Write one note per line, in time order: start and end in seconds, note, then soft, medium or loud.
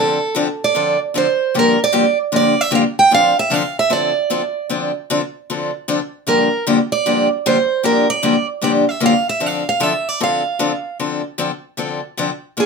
0.00 0.17 D3 medium
0.00 0.17 F3 medium
0.00 0.18 C4 medium
0.00 0.18 D4 medium
0.00 0.18 A4 medium
0.00 0.34 A4 medium
0.35 0.46 D3 medium
0.35 0.47 F3 medium
0.35 0.47 C4 medium
0.35 0.47 D4 medium
0.35 0.47 A4 medium
0.64 0.99 D5 medium
0.75 0.96 D3 medium
0.75 0.96 F3 medium
0.75 0.96 C4 medium
0.75 0.97 D4 medium
0.75 0.97 A4 medium
1.14 1.25 D3 medium
1.14 1.26 F3 medium
1.14 1.26 C4 medium
1.14 1.26 D4 medium
1.14 1.26 A4 medium
1.14 1.56 C5 medium
1.54 1.75 G2 medium
1.54 1.75 D3 medium
1.54 1.75 F3 medium
1.54 1.76 A#3 medium
1.54 1.76 D4 medium
1.54 1.76 G4 medium
1.59 1.79 A#4 medium
1.84 2.18 D5 medium
1.92 2.04 G2 medium
1.92 2.04 D3 medium
1.92 2.04 F3 medium
1.92 2.04 A#3 medium
1.92 2.04 D4 medium
1.92 2.05 G4 medium
2.32 2.53 G2 medium
2.32 2.53 D3 medium
2.32 2.54 F3 medium
2.32 2.54 A#3 medium
2.32 2.54 D4 medium
2.32 2.54 G4 medium
2.36 2.61 D5 medium
2.61 2.74 E5 medium
2.71 2.82 G2 medium
2.71 2.83 D3 medium
2.71 2.83 F3 medium
2.71 2.83 A#3 medium
2.71 2.83 D4 medium
2.71 2.83 G4 medium
2.75 2.81 F5 medium
2.99 3.13 G5 medium
3.11 3.32 D3 medium
3.11 3.32 F3 medium
3.11 3.33 C4 medium
3.11 3.33 D4 medium
3.11 3.33 A4 medium
3.11 3.38 F5 medium
3.39 3.54 E5 medium
3.50 3.62 D3 medium
3.50 3.62 F3 medium
3.50 3.62 C4 medium
3.50 3.62 D4 medium
3.50 3.62 A4 medium
3.50 3.76 F5 medium
3.79 3.91 E5 medium
3.90 4.11 D3 medium
3.90 4.11 F3 medium
3.90 4.11 C4 medium
3.90 4.12 D4 medium
3.90 4.12 A4 medium
3.90 4.66 D5 medium
4.30 4.41 D3 medium
4.30 4.41 F3 medium
4.30 4.41 C4 medium
4.30 4.41 D4 medium
4.30 4.41 A4 medium
4.69 4.90 D3 medium
4.69 4.91 F3 medium
4.69 4.91 C4 medium
4.69 4.91 D4 medium
4.69 4.91 A4 medium
5.10 5.20 D3 medium
5.10 5.20 F3 medium
5.10 5.21 C4 medium
5.10 5.21 D4 medium
5.10 5.21 A4 medium
5.50 5.70 D3 medium
5.50 5.70 F3 medium
5.50 5.70 C4 medium
5.50 5.70 D4 medium
5.50 5.70 A4 medium
5.88 5.99 D3 medium
5.88 5.99 F3 medium
5.88 5.99 C4 medium
5.88 5.99 D4 medium
5.88 5.99 A4 medium
6.27 6.48 G2 medium
6.27 6.48 D3 medium
6.27 6.48 F3 medium
6.27 6.48 A#3 medium
6.27 6.48 D4 medium
6.27 6.48 G4 medium
6.27 6.64 A#4 medium
6.67 6.77 G2 medium
6.67 6.78 D3 medium
6.67 6.78 F3 medium
6.67 6.78 A#3 medium
6.67 6.78 D4 medium
6.67 6.78 G4 medium
6.92 7.28 D5 medium
7.06 7.27 G2 medium
7.06 7.27 D3 medium
7.06 7.27 F3 medium
7.06 7.27 A#3 medium
7.06 7.27 D4 medium
7.06 7.27 G4 medium
7.46 7.57 G2 medium
7.46 7.57 D3 medium
7.46 7.56 F3 medium
7.46 7.57 A#3 medium
7.46 7.57 D4 medium
7.46 7.57 G4 medium
7.46 7.85 C5 medium
7.83 8.05 G2 medium
7.83 8.05 D3 medium
7.83 8.05 F3 medium
7.83 8.05 A#3 medium
7.83 8.05 D4 medium
7.83 8.05 G4 medium
7.83 8.08 A#4 medium
8.10 8.46 D5 medium
8.23 8.34 G2 medium
8.23 8.35 D3 medium
8.23 8.35 F3 medium
8.23 8.35 A#3 medium
8.23 8.35 D4 medium
8.23 8.35 G4 medium
8.61 8.83 G2 medium
8.61 8.84 D3 medium
8.61 8.84 F3 medium
8.61 8.84 A#3 medium
8.61 8.84 D4 medium
8.61 8.84 G4 medium
8.61 8.70 D5 medium
8.89 9.04 E5 medium
9.00 9.13 G2 medium
9.00 9.13 D3 medium
9.00 9.13 F3 medium
9.00 9.13 A#3 medium
9.00 9.13 D4 medium
9.00 9.13 G4 medium
9.06 9.27 F5 medium
9.29 9.46 E5 medium
9.40 9.62 D3 medium
9.40 9.62 F3 medium
9.40 9.62 C4 medium
9.40 9.63 D4 medium
9.40 9.63 A4 medium
9.46 9.68 F5 medium
9.69 9.83 F5 medium
9.80 9.92 D3 medium
9.80 9.92 F3 medium
9.80 9.92 C4 medium
9.80 9.92 D4 medium
9.80 9.92 A4 medium
9.80 10.09 E5 medium
10.09 10.22 D5 medium
10.20 10.42 D3 medium
10.20 10.42 F3 medium
10.20 10.42 C4 medium
10.20 10.42 D4 medium
10.20 10.42 A4 medium
10.20 10.97 F5 medium
10.59 10.71 D3 medium
10.59 10.71 F3 medium
10.59 10.72 C4 medium
10.59 10.71 D4 medium
10.59 10.71 A4 medium
10.99 11.21 D3 medium
10.99 11.21 F3 medium
10.99 11.21 C4 medium
10.99 11.21 D4 medium
10.99 11.21 A4 medium
11.38 11.50 D3 medium
11.38 11.50 F3 medium
11.38 11.50 C4 medium
11.38 11.50 D4 medium
11.38 11.51 A4 medium
11.77 11.99 D3 medium
11.77 11.99 F3 medium
11.77 12.00 C4 medium
11.77 12.00 D4 medium
11.77 12.00 A4 medium
12.17 12.29 D3 medium
12.17 12.29 F3 medium
12.17 12.30 C4 medium
12.17 12.30 D4 medium
12.17 12.30 A4 medium
12.57 12.66 A#2 medium
12.57 12.66 D3 medium
12.57 12.66 F3 medium
12.57 12.66 A#3 medium
12.57 12.66 D4 medium
12.57 12.66 G#4 medium